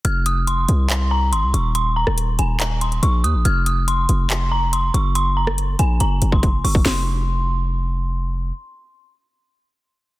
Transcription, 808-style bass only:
\new Staff \with { instrumentName = "808-style bass" } { \clef bass \time 4/4 \key f \phrygian \tempo 4 = 141 f,,4. c,4. aes,,16 c,16 ees,,8~ | ees,,8. ees,,8. ees,,4. bes,,8 ees,16 bes,,16 | f,,4. f,,2 ges,,8~ | ges,,4. bes,,8 ges,,8 ges,,4 ges,,8 |
f,,1 | r1 | }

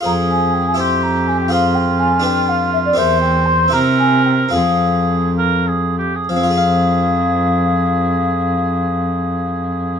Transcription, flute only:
\new Staff \with { instrumentName = "Flute" } { \time 6/8 \key f \minor \tempo 4. = 73 bes''8 aes''8 g''16 aes''16 c'''8 bes''8 aes''16 g''16 | f''8 g''8 aes''8 g''8 f''8 e''16 d''16 | e''8 g''8 c'''8 bes''8 aes''8 g''8 | f''4. r4. |
f''2.~ | f''2. | }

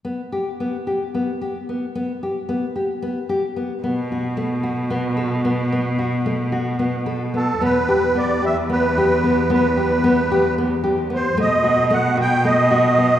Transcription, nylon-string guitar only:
\new Staff \with { instrumentName = "Nylon-string guitar" } { \time 7/8 \key e \minor \tempo 4 = 112 b8 g'8 b8 g'8 b8 g'8 b8 | b8 g'8 b8 g'8 b8 g'8 b8 | b8 fis'8 a8 fis'8 b8 a'8 b8 | b8 fis'8 a8 fis'8 b8 a'8 b8 |
b8 g'8 b8 g'8 b8 g'8 b8 | b8 g'8 b8 g'8 b8 g'8 b8 | a8 fis'8 a8 fis'8 a8 fis'8 b8 | }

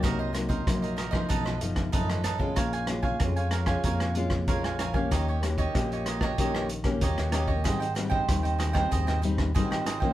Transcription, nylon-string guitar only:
\new Staff \with { instrumentName = "Nylon-string guitar" } { \time 4/4 \key bes \dorian \tempo 4 = 94 << { <ges bes ees'>8 <ges bes ees'>8 <ges bes ees'>8 r16 <f a ees'>8. <eis a dis'>8 <eis a dis'>8 r16 <aes des' eis'>16~ | <aes des' eis'>8 <aes des' f'>8 <aes des' f'>8. <aes des' f'>8. <aes des' f'>8 <aes des' f'>8 r16 <bes des' g'>16~ | <bes des' g'>8 <bes des' g'>16 r16 <bes des' g'>4 <bes des' g'>8 r16 <bes des' g'>8. <bes des' g'>16 r16 | <g c' ees'>16 r16 <g c' ees'>8 <g c' ees'>8. <g c' ees'>8. <g c' ees'>8 <g c' ees'>8 r16 <f bes des'>16 | } \\ { c4 c4 b,4 fis,4 | bes,4 f,4 bes,4 f,4 | ees4 bes,4 ees4 bes,4 | aes,4 ees4 aes,4 ees4 | } >> }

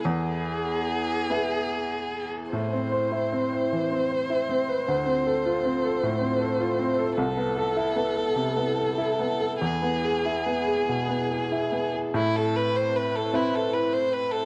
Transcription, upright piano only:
\new Staff \with { instrumentName = "Upright piano" } { \time 6/8 \key a \minor \tempo 4. = 50 e,4. <b e' gis'>4. | a,16 c'16 c''16 e'16 c'16 c''16 e16 c'16 c''16 e'16 c'16 b'16 | d,16 c'16 a'16 f'16 c'16 a'16 a,16 c'16 a'16 f'16 c'16 a'16 | c,16 b16 a'16 e'16 b16 a'16 c16 b16 a'16 e'16 b16 a'16 |
e,16 b16 gis'16 e'16 b16 gis'16 b,16 b16 gis'16 e'16 b16 gis'16 | a,4. <c' e' b'>4. | }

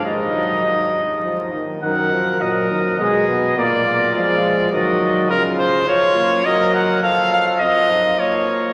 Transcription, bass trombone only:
\new Staff \with { instrumentName = "Bass trombone" } { \clef bass \time 3/4 \key ees \minor \tempo 4 = 104 ees,2~ ees,8 r8 | ges,4 bes,8 ees8 ces4 | bes,4 f4 ees4 | r2. |
r2. | }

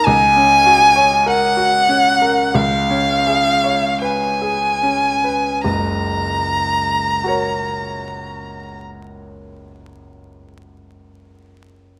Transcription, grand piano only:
\new Staff \with { instrumentName = "Grand piano" } { \time 4/4 \key fis \major \tempo 4 = 38 << { r1 | r4 <fis' ais' cis''>2. | } \\ { cis,16 cis'16 fis'16 cis''16 ais'16 fis'16 cis'16 ais'16 cis,16 cis'16 gis'16 cis''16 b'16 gis'16 cis'16 b'16 | <fis,, cis,>1 | } >> }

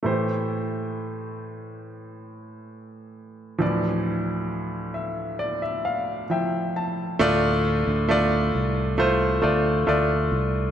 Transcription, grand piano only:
<<
  \new Staff \with { instrumentName = "Grand piano" } { \time 4/4 \key d \minor \tempo 4 = 67 << { r1 | r4. e''8 d''16 e''16 f''8 g''8 a''8 | r1 | } \\ { <a g' c''>1 | <e f d''>2. <f e' e''>4 | <a f' d''>4 <a f' d''>4 <a f' c''>8 <a f' d''>8 <a f' d''>4 | } >> }
  \new Staff \with { instrumentName = "Grand piano" } { \clef bass \time 4/4 \key d \minor <a, e>1 | <d, a,>1 | a,4. r2 r8 | }
>>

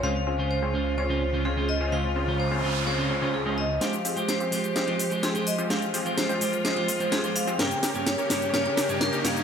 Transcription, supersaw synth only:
\new Staff \with { instrumentName = "Supersaw synth" } { \time 4/4 \key f \minor \tempo 4 = 127 <aes c' des' f' c''>8 <aes c' des' f' c''>8. <aes c' des' f' c''>16 r8 <aes c' des' f' des''>4 <aes c' des' f' c''>16 r8 <aes c' des' f' c''>16 | <aes c' des' f' c''>8 <aes c' des' f' c''>8. <aes c' des' f' c''>16 r8 <aes c' des' f' des''>8 <aes c' des' f' des''>16 <aes c' des' f' des''>8 <aes c' des' f' ees''>8. | <aes c' f' g' c''>8 <aes c' f' g' c''>8. <aes c' f' g' c''>16 r8 <aes c' f' g' ees''>4 <aes c' f' g' c''>16 r8 <aes c' f' g' c''>16 | <aes c' f' g' c''>8 <aes c' f' g' c''>8. <aes c' f' g' c''>16 r8 <aes c' f' g' ees''>4 <aes c' f' g' c''>16 r8 <aes c' f' g' c''>16 |
<des' g' bes'>8 <des' g' bes'>8. <des' g' bes'>16 r8 <des' g' bes'>8 <des' g' bes'>8. <des' g' bes'>16 r8 | }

